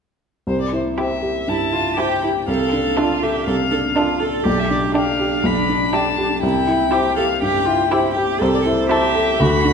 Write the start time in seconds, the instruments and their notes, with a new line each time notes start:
0.47 grand piano C2, violin C5
0.61 violin D5
0.73 grand piano E4, violin C5
0.97 viola E4, violin G4 E5, grand piano C5
1.22 grand piano G4
1.48 grand piano G2, cello E4, violin A5
1.73 grand piano E4, cello F4
1.97 viola E4, violin G4 G5, cello G4, grand piano C5
2.23 cello E4, grand piano G4
2.48 grand piano C2, cello A4, violin F5
2.73 grand piano D4
2.97 viola D4, cello F4, violin A4, grand piano D5
3.22 cello G4, grand piano A4, violin E5
3.47 grand piano C2, cello A4, violin F5
3.71 grand piano D4, cello A4
3.96 viola D4, cello F4, violin A4, grand piano D5
4.20 cello A4, grand piano A4
4.44 grand piano B1, cello G4, violin D5
4.59 violin E5
4.70 grand piano D4, violin D5
4.93 cello D4, viola D4, violin G4 F5, grand piano D5
5.19 grand piano G4
5.44 grand piano B1, violin B5
5.69 grand piano D4
5.93 viola D4, violin G4 A5, grand piano D5
6.18 grand piano G4
6.43 grand piano C2, cello E4, violin G5
6.67 grand piano E4
6.91 viola E4, violin G4, cello G4, grand piano C5
7.16 grand piano G4, cello A4, violin F5
7.41 grand piano G2, cello G4, violin G5
7.66 grand piano E4, cello F4
7.90 cello E4, viola E4, violin G4, grand piano C5
8.15 cello G4, grand piano G4
8.40 grand piano C2, cello A4, violin C5
8.55 violin D5
8.66 grand piano E4, violin C5
8.89 viola E4, cello G4, violin A4 E5, grand piano C5
9.15 grand piano A4
9.40 grand piano D2, cello F#4, violin B5
9.65 grand piano D4, cello F#4